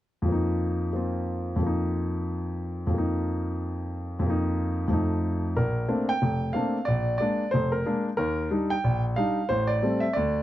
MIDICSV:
0, 0, Header, 1, 2, 480
1, 0, Start_track
1, 0, Tempo, 330033
1, 391, Time_signature, 4, 2, 24, 8
1, 15165, End_track
2, 0, Start_track
2, 0, Title_t, "Grand piano"
2, 0, Program_c, 0, 0
2, 320, Note_on_c, 0, 41, 41
2, 366, Note_on_c, 0, 53, 39
2, 416, Note_on_c, 0, 58, 39
2, 470, Note_on_c, 0, 63, 45
2, 1330, Note_off_c, 0, 58, 0
2, 1351, Note_on_c, 0, 58, 35
2, 1372, Note_on_c, 0, 60, 31
2, 1393, Note_on_c, 0, 65, 39
2, 2247, Note_off_c, 0, 41, 0
2, 2269, Note_on_c, 0, 41, 40
2, 2286, Note_off_c, 0, 53, 0
2, 2307, Note_on_c, 0, 53, 35
2, 2316, Note_off_c, 0, 58, 0
2, 2326, Note_off_c, 0, 60, 0
2, 2337, Note_off_c, 0, 65, 0
2, 2357, Note_off_c, 0, 63, 0
2, 2366, Note_on_c, 0, 58, 38
2, 2421, Note_on_c, 0, 63, 46
2, 4149, Note_off_c, 0, 41, 0
2, 4171, Note_on_c, 0, 41, 43
2, 4201, Note_off_c, 0, 53, 0
2, 4223, Note_on_c, 0, 53, 39
2, 4257, Note_off_c, 0, 58, 0
2, 4278, Note_on_c, 0, 58, 38
2, 4293, Note_off_c, 0, 63, 0
2, 4335, Note_on_c, 0, 63, 50
2, 6078, Note_off_c, 0, 41, 0
2, 6100, Note_on_c, 0, 41, 51
2, 6122, Note_off_c, 0, 53, 0
2, 6144, Note_on_c, 0, 53, 46
2, 6180, Note_off_c, 0, 58, 0
2, 6202, Note_on_c, 0, 58, 45
2, 6210, Note_off_c, 0, 63, 0
2, 6249, Note_on_c, 0, 63, 54
2, 7072, Note_off_c, 0, 41, 0
2, 7094, Note_on_c, 0, 41, 45
2, 7096, Note_off_c, 0, 53, 0
2, 7117, Note_on_c, 0, 53, 39
2, 7143, Note_off_c, 0, 58, 0
2, 7144, Note_off_c, 0, 63, 0
2, 7150, Note_on_c, 0, 57, 40
2, 7166, Note_on_c, 0, 63, 50
2, 8068, Note_off_c, 0, 41, 0
2, 8080, Note_off_c, 0, 53, 0
2, 8091, Note_on_c, 0, 34, 55
2, 8094, Note_on_c, 0, 70, 65
2, 8096, Note_off_c, 0, 57, 0
2, 8104, Note_off_c, 0, 63, 0
2, 8500, Note_off_c, 0, 34, 0
2, 8557, Note_on_c, 0, 60, 38
2, 8558, Note_on_c, 0, 58, 40
2, 8560, Note_on_c, 0, 57, 44
2, 8562, Note_on_c, 0, 62, 46
2, 8856, Note_on_c, 0, 79, 80
2, 8878, Note_off_c, 0, 60, 0
2, 8879, Note_off_c, 0, 58, 0
2, 8880, Note_off_c, 0, 57, 0
2, 8881, Note_off_c, 0, 62, 0
2, 8892, Note_off_c, 0, 70, 0
2, 9045, Note_on_c, 0, 29, 57
2, 9456, Note_off_c, 0, 29, 0
2, 9471, Note_off_c, 0, 79, 0
2, 9497, Note_on_c, 0, 77, 66
2, 9518, Note_on_c, 0, 57, 41
2, 9518, Note_on_c, 0, 58, 41
2, 9526, Note_on_c, 0, 60, 41
2, 9537, Note_on_c, 0, 62, 47
2, 9838, Note_off_c, 0, 57, 0
2, 9838, Note_off_c, 0, 58, 0
2, 9842, Note_off_c, 0, 60, 0
2, 9847, Note_off_c, 0, 62, 0
2, 9964, Note_on_c, 0, 74, 74
2, 10003, Note_off_c, 0, 77, 0
2, 10004, Note_on_c, 0, 34, 57
2, 10414, Note_off_c, 0, 34, 0
2, 10419, Note_off_c, 0, 74, 0
2, 10441, Note_on_c, 0, 74, 67
2, 10476, Note_on_c, 0, 56, 43
2, 10480, Note_on_c, 0, 58, 39
2, 10493, Note_on_c, 0, 62, 46
2, 10796, Note_off_c, 0, 56, 0
2, 10798, Note_off_c, 0, 58, 0
2, 10804, Note_off_c, 0, 62, 0
2, 10904, Note_off_c, 0, 74, 0
2, 10924, Note_on_c, 0, 72, 73
2, 10965, Note_on_c, 0, 29, 58
2, 11227, Note_on_c, 0, 70, 65
2, 11251, Note_off_c, 0, 72, 0
2, 11374, Note_off_c, 0, 29, 0
2, 11430, Note_on_c, 0, 56, 45
2, 11435, Note_on_c, 0, 58, 41
2, 11440, Note_on_c, 0, 62, 50
2, 11687, Note_off_c, 0, 70, 0
2, 11752, Note_off_c, 0, 56, 0
2, 11754, Note_off_c, 0, 58, 0
2, 11757, Note_off_c, 0, 62, 0
2, 11883, Note_on_c, 0, 70, 75
2, 11893, Note_on_c, 0, 39, 59
2, 12316, Note_off_c, 0, 39, 0
2, 12344, Note_off_c, 0, 70, 0
2, 12373, Note_on_c, 0, 55, 48
2, 12377, Note_on_c, 0, 62, 40
2, 12385, Note_on_c, 0, 63, 51
2, 12658, Note_on_c, 0, 79, 78
2, 12702, Note_off_c, 0, 55, 0
2, 12704, Note_off_c, 0, 62, 0
2, 12708, Note_off_c, 0, 63, 0
2, 12857, Note_on_c, 0, 34, 61
2, 13120, Note_off_c, 0, 79, 0
2, 13276, Note_off_c, 0, 34, 0
2, 13327, Note_on_c, 0, 77, 77
2, 13339, Note_on_c, 0, 55, 42
2, 13343, Note_on_c, 0, 63, 48
2, 13344, Note_on_c, 0, 62, 42
2, 13663, Note_off_c, 0, 55, 0
2, 13665, Note_off_c, 0, 63, 0
2, 13666, Note_off_c, 0, 62, 0
2, 13799, Note_on_c, 0, 72, 76
2, 13812, Note_on_c, 0, 33, 58
2, 13832, Note_off_c, 0, 77, 0
2, 14069, Note_on_c, 0, 74, 76
2, 14124, Note_off_c, 0, 72, 0
2, 14232, Note_off_c, 0, 33, 0
2, 14288, Note_on_c, 0, 55, 43
2, 14295, Note_on_c, 0, 57, 41
2, 14304, Note_on_c, 0, 60, 46
2, 14550, Note_on_c, 0, 76, 71
2, 14593, Note_off_c, 0, 74, 0
2, 14616, Note_off_c, 0, 55, 0
2, 14619, Note_off_c, 0, 57, 0
2, 14624, Note_off_c, 0, 60, 0
2, 14738, Note_on_c, 0, 74, 74
2, 14743, Note_off_c, 0, 76, 0
2, 14781, Note_on_c, 0, 38, 59
2, 15165, Note_off_c, 0, 38, 0
2, 15165, Note_off_c, 0, 74, 0
2, 15165, End_track
0, 0, End_of_file